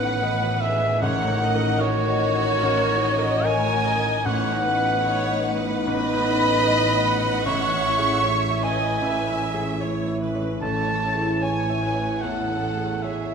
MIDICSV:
0, 0, Header, 1, 12, 480
1, 0, Start_track
1, 0, Tempo, 795756
1, 612, Time_signature, 4, 2, 24, 8
1, 1576, Tempo, 815217
1, 3496, Tempo, 790514
1, 6376, Tempo, 809717
1, 7993, End_track
2, 0, Start_track
2, 0, Title_t, "Cor anglais"
2, 0, Program_c, 0, 69
2, 0, Note_on_c, 0, 78, 107
2, 369, Note_on_c, 0, 76, 99
2, 378, Note_off_c, 0, 78, 0
2, 609, Note_off_c, 0, 76, 0
2, 615, Note_on_c, 0, 78, 101
2, 1089, Note_on_c, 0, 73, 114
2, 1098, Note_off_c, 0, 78, 0
2, 2066, Note_on_c, 0, 80, 113
2, 2075, Note_off_c, 0, 73, 0
2, 2545, Note_on_c, 0, 78, 108
2, 2554, Note_off_c, 0, 80, 0
2, 3330, Note_off_c, 0, 78, 0
2, 3490, Note_on_c, 0, 71, 127
2, 4435, Note_off_c, 0, 71, 0
2, 4462, Note_on_c, 0, 73, 124
2, 5176, Note_on_c, 0, 80, 96
2, 5185, Note_off_c, 0, 73, 0
2, 5894, Note_off_c, 0, 80, 0
2, 6378, Note_on_c, 0, 81, 94
2, 6856, Note_on_c, 0, 80, 84
2, 6865, Note_off_c, 0, 81, 0
2, 7322, Note_on_c, 0, 78, 72
2, 7331, Note_off_c, 0, 80, 0
2, 7803, Note_on_c, 0, 76, 58
2, 7812, Note_off_c, 0, 78, 0
2, 7993, Note_off_c, 0, 76, 0
2, 7993, End_track
3, 0, Start_track
3, 0, Title_t, "Flute"
3, 0, Program_c, 1, 73
3, 0, Note_on_c, 1, 78, 84
3, 373, Note_off_c, 1, 78, 0
3, 384, Note_on_c, 1, 76, 86
3, 623, Note_on_c, 1, 78, 93
3, 632, Note_off_c, 1, 76, 0
3, 1098, Note_off_c, 1, 78, 0
3, 1103, Note_on_c, 1, 73, 108
3, 2074, Note_on_c, 1, 80, 106
3, 2082, Note_off_c, 1, 73, 0
3, 2538, Note_off_c, 1, 80, 0
3, 2542, Note_on_c, 1, 78, 95
3, 3313, Note_off_c, 1, 78, 0
3, 3492, Note_on_c, 1, 83, 104
3, 4435, Note_off_c, 1, 83, 0
3, 4456, Note_on_c, 1, 85, 113
3, 5171, Note_on_c, 1, 80, 83
3, 5180, Note_off_c, 1, 85, 0
3, 5891, Note_off_c, 1, 80, 0
3, 6377, Note_on_c, 1, 81, 89
3, 6827, Note_off_c, 1, 81, 0
3, 6849, Note_on_c, 1, 80, 84
3, 7327, Note_on_c, 1, 78, 62
3, 7336, Note_off_c, 1, 80, 0
3, 7810, Note_off_c, 1, 78, 0
3, 7813, Note_on_c, 1, 76, 59
3, 7993, Note_off_c, 1, 76, 0
3, 7993, End_track
4, 0, Start_track
4, 0, Title_t, "Violin section"
4, 0, Program_c, 2, 48
4, 0, Note_on_c, 2, 78, 81
4, 368, Note_off_c, 2, 78, 0
4, 375, Note_on_c, 2, 76, 77
4, 608, Note_on_c, 2, 78, 83
4, 612, Note_off_c, 2, 76, 0
4, 1081, Note_off_c, 2, 78, 0
4, 1091, Note_on_c, 2, 73, 101
4, 2066, Note_off_c, 2, 73, 0
4, 2070, Note_on_c, 2, 80, 97
4, 2533, Note_on_c, 2, 78, 84
4, 2541, Note_off_c, 2, 80, 0
4, 3473, Note_off_c, 2, 78, 0
4, 3484, Note_on_c, 2, 83, 105
4, 4455, Note_off_c, 2, 83, 0
4, 4457, Note_on_c, 2, 85, 97
4, 5167, Note_off_c, 2, 85, 0
4, 5174, Note_on_c, 2, 80, 78
4, 5893, Note_off_c, 2, 80, 0
4, 6378, Note_on_c, 2, 81, 80
4, 6828, Note_off_c, 2, 81, 0
4, 6858, Note_on_c, 2, 80, 72
4, 7327, Note_off_c, 2, 80, 0
4, 7329, Note_on_c, 2, 78, 60
4, 7811, Note_off_c, 2, 78, 0
4, 7815, Note_on_c, 2, 76, 52
4, 7993, Note_off_c, 2, 76, 0
4, 7993, End_track
5, 0, Start_track
5, 0, Title_t, "Viola section"
5, 0, Program_c, 3, 48
5, 0, Note_on_c, 3, 71, 81
5, 614, Note_off_c, 3, 71, 0
5, 618, Note_on_c, 3, 73, 73
5, 850, Note_off_c, 3, 73, 0
5, 855, Note_on_c, 3, 75, 79
5, 1089, Note_on_c, 3, 66, 78
5, 1094, Note_off_c, 3, 75, 0
5, 1574, Note_off_c, 3, 66, 0
5, 1576, Note_on_c, 3, 70, 80
5, 1820, Note_off_c, 3, 70, 0
5, 1822, Note_on_c, 3, 75, 74
5, 2067, Note_off_c, 3, 75, 0
5, 2068, Note_on_c, 3, 73, 86
5, 2306, Note_off_c, 3, 73, 0
5, 2309, Note_on_c, 3, 75, 75
5, 2542, Note_off_c, 3, 75, 0
5, 2546, Note_on_c, 3, 73, 86
5, 2775, Note_on_c, 3, 71, 79
5, 2776, Note_off_c, 3, 73, 0
5, 3004, Note_off_c, 3, 71, 0
5, 3010, Note_on_c, 3, 73, 91
5, 3247, Note_off_c, 3, 73, 0
5, 3256, Note_on_c, 3, 71, 90
5, 3980, Note_on_c, 3, 75, 80
5, 3983, Note_off_c, 3, 71, 0
5, 4221, Note_on_c, 3, 78, 90
5, 4222, Note_off_c, 3, 75, 0
5, 4933, Note_off_c, 3, 78, 0
5, 4937, Note_on_c, 3, 73, 81
5, 5172, Note_off_c, 3, 73, 0
5, 5174, Note_on_c, 3, 75, 79
5, 5406, Note_off_c, 3, 75, 0
5, 5417, Note_on_c, 3, 76, 84
5, 5895, Note_off_c, 3, 76, 0
5, 5898, Note_on_c, 3, 73, 70
5, 6135, Note_off_c, 3, 73, 0
5, 6137, Note_on_c, 3, 71, 68
5, 6372, Note_off_c, 3, 71, 0
5, 6380, Note_on_c, 3, 69, 66
5, 6852, Note_off_c, 3, 69, 0
5, 6855, Note_on_c, 3, 73, 62
5, 7088, Note_off_c, 3, 73, 0
5, 7091, Note_on_c, 3, 71, 57
5, 7326, Note_off_c, 3, 71, 0
5, 7328, Note_on_c, 3, 69, 52
5, 7810, Note_off_c, 3, 69, 0
5, 7813, Note_on_c, 3, 73, 49
5, 7993, Note_off_c, 3, 73, 0
5, 7993, End_track
6, 0, Start_track
6, 0, Title_t, "Felt piano"
6, 0, Program_c, 4, 0
6, 0, Control_c, 4, 64, 127
6, 0, Note_on_c, 4, 33, 56
6, 0, Note_on_c, 4, 63, 51
6, 0, Note_on_c, 4, 71, 59
6, 0, Note_on_c, 4, 75, 50
6, 0, Note_on_c, 4, 78, 61
6, 73, Note_off_c, 4, 63, 0
6, 136, Note_off_c, 4, 75, 0
6, 136, Note_on_c, 4, 75, 61
6, 232, Note_off_c, 4, 71, 0
6, 298, Note_off_c, 4, 78, 0
6, 298, Note_on_c, 4, 78, 59
6, 390, Note_off_c, 4, 75, 0
6, 460, Note_on_c, 4, 75, 56
6, 550, Note_off_c, 4, 78, 0
6, 589, Note_off_c, 4, 33, 0
6, 614, Note_on_c, 4, 33, 72
6, 615, Note_off_c, 4, 75, 0
6, 622, Control_c, 4, 64, 0
6, 716, Control_c, 4, 64, 127
6, 772, Note_on_c, 4, 63, 56
6, 937, Note_on_c, 4, 70, 55
6, 1028, Note_off_c, 4, 63, 0
6, 1095, Note_on_c, 4, 75, 58
6, 1192, Note_off_c, 4, 70, 0
6, 1261, Note_on_c, 4, 78, 65
6, 1351, Note_off_c, 4, 75, 0
6, 1418, Note_on_c, 4, 75, 58
6, 1515, Note_off_c, 4, 78, 0
6, 1553, Note_off_c, 4, 33, 0
6, 1583, Note_on_c, 4, 33, 66
6, 1674, Note_off_c, 4, 75, 0
6, 1743, Note_on_c, 4, 63, 55
6, 1913, Note_on_c, 4, 70, 56
6, 2004, Note_off_c, 4, 63, 0
6, 2070, Note_on_c, 4, 75, 65
6, 2167, Note_off_c, 4, 70, 0
6, 2234, Note_on_c, 4, 78, 61
6, 2322, Note_off_c, 4, 75, 0
6, 2386, Note_on_c, 4, 75, 59
6, 2481, Note_off_c, 4, 78, 0
6, 2519, Note_off_c, 4, 33, 0
6, 2541, Note_off_c, 4, 75, 0
6, 2544, Note_on_c, 4, 33, 72
6, 2551, Control_c, 4, 64, 0
6, 2655, Control_c, 4, 64, 127
6, 2698, Note_on_c, 4, 63, 58
6, 2851, Note_on_c, 4, 71, 59
6, 2946, Note_off_c, 4, 63, 0
6, 3010, Note_on_c, 4, 75, 62
6, 3104, Note_off_c, 4, 71, 0
6, 3167, Note_on_c, 4, 78, 60
6, 3269, Note_off_c, 4, 75, 0
6, 3324, Note_on_c, 4, 75, 57
6, 3430, Note_off_c, 4, 78, 0
6, 3474, Note_off_c, 4, 33, 0
6, 3493, Note_on_c, 4, 33, 67
6, 3588, Note_off_c, 4, 75, 0
6, 3655, Note_on_c, 4, 63, 54
6, 3815, Note_on_c, 4, 71, 64
6, 3914, Note_off_c, 4, 63, 0
6, 3976, Note_on_c, 4, 75, 54
6, 4075, Note_off_c, 4, 71, 0
6, 4139, Note_on_c, 4, 78, 56
6, 4236, Note_off_c, 4, 75, 0
6, 4301, Note_on_c, 4, 75, 61
6, 4397, Note_off_c, 4, 78, 0
6, 4436, Note_off_c, 4, 33, 0
6, 4458, Note_on_c, 4, 33, 79
6, 4460, Note_off_c, 4, 75, 0
6, 4472, Control_c, 4, 64, 0
6, 4570, Control_c, 4, 64, 127
6, 4629, Note_on_c, 4, 61, 54
6, 4781, Note_on_c, 4, 68, 51
6, 4875, Note_off_c, 4, 61, 0
6, 4932, Note_on_c, 4, 73, 57
6, 5030, Note_off_c, 4, 68, 0
6, 5091, Note_on_c, 4, 76, 65
6, 5185, Note_off_c, 4, 73, 0
6, 5248, Note_on_c, 4, 73, 49
6, 5345, Note_off_c, 4, 76, 0
6, 5383, Note_off_c, 4, 33, 0
6, 5404, Note_on_c, 4, 33, 56
6, 5505, Note_off_c, 4, 73, 0
6, 5566, Note_on_c, 4, 61, 47
6, 5724, Note_on_c, 4, 68, 55
6, 5825, Note_off_c, 4, 61, 0
6, 5891, Note_on_c, 4, 73, 57
6, 5983, Note_off_c, 4, 68, 0
6, 6046, Note_on_c, 4, 76, 50
6, 6147, Note_off_c, 4, 73, 0
6, 6216, Note_on_c, 4, 73, 46
6, 6307, Note_off_c, 4, 76, 0
6, 6347, Note_off_c, 4, 33, 0
6, 6375, Note_on_c, 4, 33, 57
6, 6376, Note_off_c, 4, 73, 0
6, 6385, Control_c, 4, 64, 0
6, 6466, Control_c, 4, 64, 127
6, 6529, Note_on_c, 4, 61, 48
6, 6692, Note_on_c, 4, 68, 43
6, 6784, Note_off_c, 4, 61, 0
6, 6855, Note_on_c, 4, 73, 50
6, 6944, Note_off_c, 4, 68, 0
6, 7015, Note_on_c, 4, 76, 45
6, 7104, Note_off_c, 4, 73, 0
6, 7170, Note_on_c, 4, 73, 39
6, 7263, Note_off_c, 4, 76, 0
6, 7300, Note_off_c, 4, 33, 0
6, 7333, Note_on_c, 4, 40, 38
6, 7422, Note_off_c, 4, 73, 0
6, 7492, Note_on_c, 4, 61, 37
6, 7585, Note_off_c, 4, 40, 0
6, 7654, Note_on_c, 4, 68, 38
6, 7747, Note_off_c, 4, 61, 0
6, 7816, Note_on_c, 4, 73, 38
6, 7911, Note_off_c, 4, 68, 0
6, 7993, Note_off_c, 4, 73, 0
6, 7993, End_track
7, 0, Start_track
7, 0, Title_t, "Violin section"
7, 0, Program_c, 5, 48
7, 0, Note_on_c, 5, 71, 87
7, 366, Note_off_c, 5, 71, 0
7, 383, Note_on_c, 5, 68, 83
7, 616, Note_off_c, 5, 68, 0
7, 624, Note_on_c, 5, 70, 85
7, 1089, Note_off_c, 5, 70, 0
7, 1096, Note_on_c, 5, 66, 102
7, 2068, Note_off_c, 5, 66, 0
7, 2075, Note_on_c, 5, 70, 96
7, 2540, Note_on_c, 5, 71, 81
7, 2544, Note_off_c, 5, 70, 0
7, 3492, Note_on_c, 5, 75, 113
7, 3496, Note_off_c, 5, 71, 0
7, 4460, Note_off_c, 5, 75, 0
7, 4465, Note_on_c, 5, 76, 88
7, 5157, Note_off_c, 5, 76, 0
7, 5175, Note_on_c, 5, 71, 83
7, 5894, Note_off_c, 5, 71, 0
7, 6379, Note_on_c, 5, 73, 74
7, 6828, Note_off_c, 5, 73, 0
7, 6852, Note_on_c, 5, 73, 78
7, 7315, Note_off_c, 5, 73, 0
7, 7334, Note_on_c, 5, 69, 74
7, 7813, Note_off_c, 5, 69, 0
7, 7814, Note_on_c, 5, 68, 60
7, 7993, Note_off_c, 5, 68, 0
7, 7993, End_track
8, 0, Start_track
8, 0, Title_t, "Harp"
8, 0, Program_c, 6, 46
8, 0, Note_on_c, 6, 45, 77
8, 0, Note_on_c, 6, 51, 59
8, 0, Note_on_c, 6, 54, 51
8, 0, Note_on_c, 6, 66, 59
8, 0, Note_on_c, 6, 71, 62
8, 0, Note_on_c, 6, 78, 60
8, 0, Note_on_c, 6, 83, 58
8, 133, Note_off_c, 6, 71, 0
8, 140, Note_on_c, 6, 71, 64
8, 251, Note_off_c, 6, 66, 0
8, 258, Note_on_c, 6, 66, 64
8, 374, Note_off_c, 6, 54, 0
8, 381, Note_on_c, 6, 54, 59
8, 500, Note_on_c, 6, 63, 60
8, 614, Note_off_c, 6, 45, 0
8, 622, Note_on_c, 6, 45, 70
8, 630, Note_off_c, 6, 83, 0
8, 633, Note_off_c, 6, 71, 0
8, 735, Note_off_c, 6, 54, 0
8, 742, Note_on_c, 6, 54, 61
8, 855, Note_off_c, 6, 63, 0
8, 862, Note_on_c, 6, 63, 57
8, 973, Note_off_c, 6, 66, 0
8, 980, Note_on_c, 6, 66, 61
8, 1102, Note_on_c, 6, 70, 61
8, 1224, Note_on_c, 6, 75, 59
8, 1273, Note_off_c, 6, 51, 0
8, 1333, Note_off_c, 6, 78, 0
8, 1341, Note_on_c, 6, 78, 67
8, 1463, Note_on_c, 6, 82, 65
8, 1578, Note_off_c, 6, 78, 0
8, 1585, Note_on_c, 6, 78, 71
8, 1691, Note_off_c, 6, 82, 0
8, 1698, Note_on_c, 6, 82, 59
8, 1815, Note_off_c, 6, 78, 0
8, 1822, Note_on_c, 6, 78, 67
8, 1937, Note_off_c, 6, 75, 0
8, 1944, Note_on_c, 6, 75, 61
8, 2061, Note_off_c, 6, 70, 0
8, 2068, Note_on_c, 6, 70, 69
8, 2181, Note_off_c, 6, 66, 0
8, 2188, Note_on_c, 6, 66, 65
8, 2296, Note_off_c, 6, 54, 0
8, 2303, Note_on_c, 6, 54, 63
8, 2418, Note_off_c, 6, 63, 0
8, 2425, Note_on_c, 6, 63, 67
8, 2532, Note_off_c, 6, 45, 0
8, 2539, Note_on_c, 6, 45, 78
8, 2559, Note_off_c, 6, 70, 0
8, 2559, Note_off_c, 6, 82, 0
8, 2648, Note_off_c, 6, 54, 0
8, 2655, Note_on_c, 6, 54, 60
8, 2768, Note_off_c, 6, 63, 0
8, 2775, Note_on_c, 6, 63, 66
8, 2883, Note_off_c, 6, 66, 0
8, 2890, Note_on_c, 6, 66, 58
8, 3011, Note_on_c, 6, 71, 60
8, 3119, Note_off_c, 6, 75, 0
8, 3126, Note_on_c, 6, 75, 61
8, 3240, Note_off_c, 6, 78, 0
8, 3247, Note_on_c, 6, 78, 64
8, 3368, Note_on_c, 6, 83, 71
8, 3480, Note_off_c, 6, 78, 0
8, 3487, Note_on_c, 6, 78, 68
8, 3605, Note_off_c, 6, 83, 0
8, 3612, Note_on_c, 6, 83, 62
8, 3718, Note_off_c, 6, 78, 0
8, 3725, Note_on_c, 6, 78, 63
8, 3848, Note_off_c, 6, 75, 0
8, 3855, Note_on_c, 6, 75, 56
8, 3967, Note_off_c, 6, 71, 0
8, 3974, Note_on_c, 6, 71, 64
8, 4086, Note_off_c, 6, 66, 0
8, 4094, Note_on_c, 6, 66, 55
8, 4207, Note_off_c, 6, 54, 0
8, 4214, Note_on_c, 6, 54, 55
8, 4329, Note_off_c, 6, 63, 0
8, 4337, Note_on_c, 6, 63, 61
8, 4449, Note_off_c, 6, 45, 0
8, 4456, Note_on_c, 6, 45, 73
8, 4473, Note_off_c, 6, 78, 0
8, 4476, Note_off_c, 6, 54, 0
8, 4476, Note_off_c, 6, 66, 0
8, 4477, Note_off_c, 6, 63, 0
8, 4477, Note_off_c, 6, 71, 0
8, 4477, Note_off_c, 6, 83, 0
8, 4478, Note_off_c, 6, 75, 0
8, 4578, Note_on_c, 6, 52, 55
8, 4700, Note_on_c, 6, 61, 63
8, 4821, Note_on_c, 6, 64, 63
8, 5052, Note_on_c, 6, 73, 54
8, 5175, Note_on_c, 6, 76, 61
8, 5409, Note_off_c, 6, 76, 0
8, 5417, Note_on_c, 6, 76, 60
8, 5650, Note_off_c, 6, 76, 0
8, 5657, Note_on_c, 6, 76, 62
8, 5763, Note_off_c, 6, 73, 0
8, 5770, Note_on_c, 6, 73, 55
8, 6012, Note_off_c, 6, 64, 0
8, 6019, Note_on_c, 6, 64, 54
8, 6130, Note_off_c, 6, 52, 0
8, 6138, Note_on_c, 6, 52, 55
8, 6249, Note_off_c, 6, 61, 0
8, 6256, Note_on_c, 6, 61, 45
8, 6375, Note_off_c, 6, 45, 0
8, 6382, Note_on_c, 6, 45, 58
8, 6396, Note_off_c, 6, 52, 0
8, 6497, Note_on_c, 6, 52, 43
8, 6616, Note_off_c, 6, 61, 0
8, 6623, Note_on_c, 6, 61, 49
8, 6733, Note_off_c, 6, 64, 0
8, 6740, Note_on_c, 6, 64, 47
8, 6970, Note_off_c, 6, 73, 0
8, 6977, Note_on_c, 6, 73, 43
8, 7083, Note_off_c, 6, 76, 0
8, 7090, Note_on_c, 6, 76, 46
8, 7323, Note_off_c, 6, 76, 0
8, 7330, Note_on_c, 6, 76, 40
8, 7564, Note_off_c, 6, 76, 0
8, 7572, Note_on_c, 6, 76, 40
8, 7690, Note_off_c, 6, 73, 0
8, 7697, Note_on_c, 6, 73, 35
8, 7816, Note_on_c, 6, 56, 39
8, 7933, Note_off_c, 6, 64, 0
8, 7940, Note_on_c, 6, 64, 39
8, 7993, Note_off_c, 6, 45, 0
8, 7993, Note_off_c, 6, 52, 0
8, 7993, Note_off_c, 6, 56, 0
8, 7993, Note_off_c, 6, 61, 0
8, 7993, Note_off_c, 6, 64, 0
8, 7993, Note_off_c, 6, 73, 0
8, 7993, Note_off_c, 6, 76, 0
8, 7993, End_track
9, 0, Start_track
9, 0, Title_t, "French horn section"
9, 0, Program_c, 7, 60
9, 0, Note_on_c, 7, 51, 89
9, 0, Note_on_c, 7, 59, 92
9, 508, Note_off_c, 7, 59, 0
9, 610, Note_on_c, 7, 70, 93
9, 2515, Note_off_c, 7, 70, 0
9, 2517, Note_off_c, 7, 51, 0
9, 2538, Note_on_c, 7, 63, 99
9, 2540, Note_on_c, 7, 59, 97
9, 4436, Note_off_c, 7, 63, 0
9, 4437, Note_off_c, 7, 59, 0
9, 4461, Note_on_c, 7, 52, 88
9, 4465, Note_on_c, 7, 64, 91
9, 7993, Note_off_c, 7, 52, 0
9, 7993, Note_off_c, 7, 64, 0
9, 7993, End_track
10, 0, Start_track
10, 0, Title_t, "Cello section"
10, 0, Program_c, 8, 48
10, 0, Note_on_c, 8, 45, 78
10, 2517, Note_off_c, 8, 45, 0
10, 2543, Note_on_c, 8, 45, 80
10, 6352, Note_off_c, 8, 45, 0
10, 6375, Note_on_c, 8, 45, 63
10, 7993, Note_off_c, 8, 45, 0
10, 7993, End_track
11, 0, Start_track
11, 0, Title_t, "Timpani"
11, 0, Program_c, 10, 47
11, 615, Note_on_c, 10, 45, 92
11, 1311, Note_off_c, 10, 45, 0
11, 4459, Note_on_c, 10, 45, 77
11, 5144, Note_off_c, 10, 45, 0
11, 6375, Note_on_c, 10, 45, 72
11, 7062, Note_off_c, 10, 45, 0
11, 7993, End_track
12, 0, Start_track
12, 0, Title_t, "Double bass section"
12, 0, Program_c, 11, 48
12, 0, Note_on_c, 11, 33, 72
12, 2517, Note_off_c, 11, 33, 0
12, 2545, Note_on_c, 11, 33, 77
12, 6353, Note_off_c, 11, 33, 0
12, 6380, Note_on_c, 11, 33, 66
12, 7993, Note_off_c, 11, 33, 0
12, 7993, End_track
0, 0, End_of_file